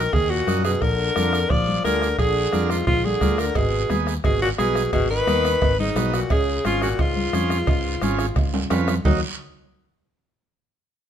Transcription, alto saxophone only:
0, 0, Header, 1, 2, 480
1, 0, Start_track
1, 0, Key_signature, -6, "minor"
1, 0, Tempo, 343249
1, 1140, Time_signature, 4, 2, 24, 8
1, 15517, End_track
2, 0, Start_track
2, 0, Title_t, "Alto saxophone"
2, 0, Program_c, 0, 65
2, 0, Note_on_c, 0, 70, 92
2, 182, Note_on_c, 0, 68, 97
2, 203, Note_off_c, 0, 70, 0
2, 421, Note_on_c, 0, 66, 93
2, 442, Note_off_c, 0, 68, 0
2, 888, Note_off_c, 0, 66, 0
2, 896, Note_on_c, 0, 68, 85
2, 1135, Note_on_c, 0, 70, 101
2, 1156, Note_off_c, 0, 68, 0
2, 2098, Note_on_c, 0, 74, 101
2, 2119, Note_off_c, 0, 70, 0
2, 2572, Note_off_c, 0, 74, 0
2, 2580, Note_on_c, 0, 70, 98
2, 3026, Note_off_c, 0, 70, 0
2, 3058, Note_on_c, 0, 68, 98
2, 3772, Note_on_c, 0, 65, 82
2, 3793, Note_off_c, 0, 68, 0
2, 4007, Note_off_c, 0, 65, 0
2, 4015, Note_on_c, 0, 65, 104
2, 4259, Note_on_c, 0, 68, 94
2, 4280, Note_off_c, 0, 65, 0
2, 4737, Note_on_c, 0, 70, 85
2, 4758, Note_off_c, 0, 68, 0
2, 4976, Note_on_c, 0, 68, 91
2, 4997, Note_off_c, 0, 70, 0
2, 5561, Note_off_c, 0, 68, 0
2, 5941, Note_on_c, 0, 68, 91
2, 6162, Note_off_c, 0, 68, 0
2, 6177, Note_on_c, 0, 66, 95
2, 6285, Note_off_c, 0, 66, 0
2, 6414, Note_on_c, 0, 68, 89
2, 6861, Note_off_c, 0, 68, 0
2, 6896, Note_on_c, 0, 68, 85
2, 7119, Note_off_c, 0, 68, 0
2, 7136, Note_on_c, 0, 71, 107
2, 8039, Note_off_c, 0, 71, 0
2, 8105, Note_on_c, 0, 63, 87
2, 8589, Note_on_c, 0, 66, 78
2, 8610, Note_off_c, 0, 63, 0
2, 8822, Note_off_c, 0, 66, 0
2, 8830, Note_on_c, 0, 68, 87
2, 9269, Note_off_c, 0, 68, 0
2, 9315, Note_on_c, 0, 65, 96
2, 9529, Note_off_c, 0, 65, 0
2, 9547, Note_on_c, 0, 66, 86
2, 9790, Note_on_c, 0, 65, 87
2, 9811, Note_off_c, 0, 66, 0
2, 12183, Note_off_c, 0, 65, 0
2, 12654, Note_on_c, 0, 63, 78
2, 12879, Note_off_c, 0, 63, 0
2, 15517, End_track
0, 0, End_of_file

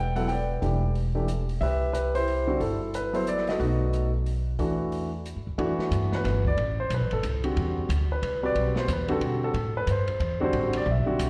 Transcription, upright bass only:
0, 0, Header, 1, 3, 480
1, 0, Start_track
1, 0, Key_signature, 1, "minor"
1, 0, Tempo, 330579
1, 896, Time_signature, 3, 2, 24, 8
1, 16405, End_track
2, 0, Start_track
2, 0, Title_t, "Upright bass"
2, 0, Program_c, 0, 32
2, 0, Note_on_c, 0, 28, 86
2, 835, Note_off_c, 0, 28, 0
2, 900, Note_on_c, 0, 28, 87
2, 2281, Note_off_c, 0, 28, 0
2, 2335, Note_on_c, 0, 36, 88
2, 3718, Note_off_c, 0, 36, 0
2, 3781, Note_on_c, 0, 31, 83
2, 5162, Note_off_c, 0, 31, 0
2, 5222, Note_on_c, 0, 35, 95
2, 6603, Note_off_c, 0, 35, 0
2, 6663, Note_on_c, 0, 40, 85
2, 7723, Note_off_c, 0, 40, 0
2, 7782, Note_on_c, 0, 43, 61
2, 7930, Note_off_c, 0, 43, 0
2, 7941, Note_on_c, 0, 38, 61
2, 8089, Note_off_c, 0, 38, 0
2, 8105, Note_on_c, 0, 40, 89
2, 8378, Note_off_c, 0, 40, 0
2, 8582, Note_on_c, 0, 43, 91
2, 9047, Note_off_c, 0, 43, 0
2, 9064, Note_on_c, 0, 31, 93
2, 9527, Note_off_c, 0, 31, 0
2, 9543, Note_on_c, 0, 33, 93
2, 10007, Note_off_c, 0, 33, 0
2, 10023, Note_on_c, 0, 35, 94
2, 10175, Note_off_c, 0, 35, 0
2, 10175, Note_on_c, 0, 33, 53
2, 10334, Note_off_c, 0, 33, 0
2, 10343, Note_on_c, 0, 31, 69
2, 10490, Note_off_c, 0, 31, 0
2, 10496, Note_on_c, 0, 36, 91
2, 10963, Note_off_c, 0, 36, 0
2, 10979, Note_on_c, 0, 40, 86
2, 11444, Note_off_c, 0, 40, 0
2, 11456, Note_on_c, 0, 38, 99
2, 11922, Note_off_c, 0, 38, 0
2, 11937, Note_on_c, 0, 36, 81
2, 12403, Note_off_c, 0, 36, 0
2, 12414, Note_on_c, 0, 35, 83
2, 12881, Note_off_c, 0, 35, 0
2, 12891, Note_on_c, 0, 40, 93
2, 13359, Note_off_c, 0, 40, 0
2, 13369, Note_on_c, 0, 47, 81
2, 13838, Note_off_c, 0, 47, 0
2, 13847, Note_on_c, 0, 45, 88
2, 14317, Note_off_c, 0, 45, 0
2, 14329, Note_on_c, 0, 43, 94
2, 14798, Note_off_c, 0, 43, 0
2, 14804, Note_on_c, 0, 40, 92
2, 15275, Note_off_c, 0, 40, 0
2, 15286, Note_on_c, 0, 33, 91
2, 15756, Note_off_c, 0, 33, 0
2, 15766, Note_on_c, 0, 35, 98
2, 16046, Note_off_c, 0, 35, 0
2, 16249, Note_on_c, 0, 36, 90
2, 16405, Note_off_c, 0, 36, 0
2, 16405, End_track
3, 0, Start_track
3, 0, Title_t, "Muted upright bass strokes"
3, 8387, Note_on_c, 9, 29, 37
3, 8533, Note_off_c, 9, 29, 0
3, 16062, Note_on_c, 9, 29, 42
3, 16207, Note_off_c, 9, 29, 0
3, 16405, End_track
0, 0, End_of_file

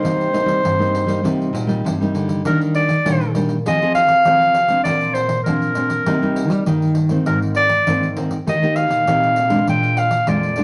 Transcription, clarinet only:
0, 0, Header, 1, 2, 480
1, 0, Start_track
1, 0, Key_signature, -3, "major"
1, 0, Tempo, 602410
1, 31, Time_signature, 4, 2, 24, 8
1, 8475, End_track
2, 0, Start_track
2, 0, Title_t, "Clarinet"
2, 0, Program_c, 0, 71
2, 0, Note_on_c, 0, 72, 90
2, 1442, Note_off_c, 0, 72, 0
2, 1961, Note_on_c, 0, 70, 79
2, 2068, Note_off_c, 0, 70, 0
2, 2194, Note_on_c, 0, 74, 92
2, 2644, Note_off_c, 0, 74, 0
2, 2928, Note_on_c, 0, 75, 92
2, 3141, Note_off_c, 0, 75, 0
2, 3146, Note_on_c, 0, 77, 112
2, 3840, Note_off_c, 0, 77, 0
2, 3855, Note_on_c, 0, 74, 95
2, 4093, Note_on_c, 0, 72, 75
2, 4105, Note_off_c, 0, 74, 0
2, 4326, Note_off_c, 0, 72, 0
2, 4331, Note_on_c, 0, 70, 71
2, 5511, Note_off_c, 0, 70, 0
2, 5788, Note_on_c, 0, 70, 76
2, 5897, Note_off_c, 0, 70, 0
2, 6028, Note_on_c, 0, 74, 102
2, 6478, Note_off_c, 0, 74, 0
2, 6764, Note_on_c, 0, 75, 85
2, 6980, Note_on_c, 0, 77, 90
2, 6992, Note_off_c, 0, 75, 0
2, 7704, Note_off_c, 0, 77, 0
2, 7727, Note_on_c, 0, 79, 92
2, 7951, Note_on_c, 0, 77, 82
2, 7963, Note_off_c, 0, 79, 0
2, 8197, Note_on_c, 0, 74, 80
2, 8209, Note_off_c, 0, 77, 0
2, 8475, Note_off_c, 0, 74, 0
2, 8475, End_track
0, 0, End_of_file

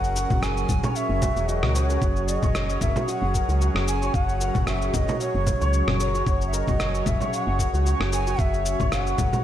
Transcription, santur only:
0, 0, Header, 1, 2, 480
1, 0, Start_track
1, 0, Tempo, 530973
1, 1824, Time_signature, 4, 2, 24, 8
1, 8533, End_track
2, 0, Start_track
2, 0, Title_t, "Santur"
2, 0, Program_c, 0, 15
2, 0, Note_on_c, 0, 66, 82
2, 0, Note_on_c, 0, 70, 75
2, 0, Note_on_c, 0, 73, 105
2, 0, Note_on_c, 0, 78, 85
2, 141, Note_off_c, 0, 70, 0
2, 145, Note_on_c, 0, 70, 78
2, 273, Note_off_c, 0, 66, 0
2, 276, Note_on_c, 0, 66, 79
2, 380, Note_off_c, 0, 78, 0
2, 383, Note_on_c, 0, 78, 77
2, 750, Note_off_c, 0, 73, 0
2, 754, Note_on_c, 0, 73, 101
2, 1099, Note_off_c, 0, 66, 0
2, 1103, Note_on_c, 0, 66, 96
2, 1229, Note_off_c, 0, 66, 0
2, 1233, Note_on_c, 0, 66, 78
2, 1337, Note_off_c, 0, 66, 0
2, 1341, Note_on_c, 0, 66, 78
2, 1468, Note_off_c, 0, 78, 0
2, 1472, Note_on_c, 0, 78, 76
2, 1578, Note_off_c, 0, 66, 0
2, 1582, Note_on_c, 0, 66, 79
2, 1708, Note_off_c, 0, 70, 0
2, 1712, Note_on_c, 0, 70, 73
2, 1820, Note_off_c, 0, 78, 0
2, 1823, Note_on_c, 0, 78, 77
2, 2188, Note_off_c, 0, 73, 0
2, 2191, Note_on_c, 0, 73, 103
2, 2538, Note_off_c, 0, 70, 0
2, 2542, Note_on_c, 0, 70, 74
2, 2669, Note_off_c, 0, 66, 0
2, 2673, Note_on_c, 0, 66, 80
2, 2779, Note_off_c, 0, 66, 0
2, 2782, Note_on_c, 0, 66, 78
2, 3019, Note_off_c, 0, 70, 0
2, 3022, Note_on_c, 0, 70, 82
2, 3150, Note_off_c, 0, 66, 0
2, 3154, Note_on_c, 0, 66, 84
2, 3259, Note_off_c, 0, 78, 0
2, 3263, Note_on_c, 0, 78, 79
2, 3629, Note_off_c, 0, 73, 0
2, 3632, Note_on_c, 0, 73, 98
2, 3980, Note_off_c, 0, 70, 0
2, 3983, Note_on_c, 0, 70, 80
2, 4108, Note_off_c, 0, 66, 0
2, 4112, Note_on_c, 0, 66, 79
2, 4217, Note_off_c, 0, 66, 0
2, 4220, Note_on_c, 0, 66, 80
2, 4459, Note_off_c, 0, 70, 0
2, 4462, Note_on_c, 0, 70, 75
2, 4589, Note_off_c, 0, 66, 0
2, 4592, Note_on_c, 0, 66, 77
2, 4698, Note_off_c, 0, 78, 0
2, 4702, Note_on_c, 0, 78, 84
2, 5070, Note_off_c, 0, 73, 0
2, 5074, Note_on_c, 0, 73, 108
2, 5417, Note_off_c, 0, 70, 0
2, 5421, Note_on_c, 0, 70, 77
2, 5550, Note_off_c, 0, 66, 0
2, 5554, Note_on_c, 0, 66, 80
2, 5656, Note_off_c, 0, 66, 0
2, 5660, Note_on_c, 0, 66, 85
2, 5900, Note_off_c, 0, 70, 0
2, 5903, Note_on_c, 0, 70, 83
2, 6028, Note_off_c, 0, 66, 0
2, 6032, Note_on_c, 0, 66, 81
2, 6135, Note_off_c, 0, 78, 0
2, 6139, Note_on_c, 0, 78, 82
2, 6507, Note_off_c, 0, 73, 0
2, 6511, Note_on_c, 0, 73, 103
2, 6857, Note_off_c, 0, 70, 0
2, 6861, Note_on_c, 0, 70, 76
2, 6989, Note_off_c, 0, 66, 0
2, 6993, Note_on_c, 0, 66, 79
2, 7098, Note_off_c, 0, 66, 0
2, 7102, Note_on_c, 0, 66, 81
2, 7338, Note_off_c, 0, 70, 0
2, 7342, Note_on_c, 0, 70, 75
2, 7472, Note_off_c, 0, 66, 0
2, 7476, Note_on_c, 0, 66, 79
2, 7579, Note_off_c, 0, 78, 0
2, 7582, Note_on_c, 0, 78, 85
2, 7950, Note_off_c, 0, 73, 0
2, 7954, Note_on_c, 0, 73, 106
2, 8297, Note_off_c, 0, 70, 0
2, 8301, Note_on_c, 0, 70, 71
2, 8426, Note_off_c, 0, 66, 0
2, 8430, Note_on_c, 0, 66, 82
2, 8533, Note_off_c, 0, 66, 0
2, 8533, Note_off_c, 0, 70, 0
2, 8533, Note_off_c, 0, 73, 0
2, 8533, Note_off_c, 0, 78, 0
2, 8533, End_track
0, 0, End_of_file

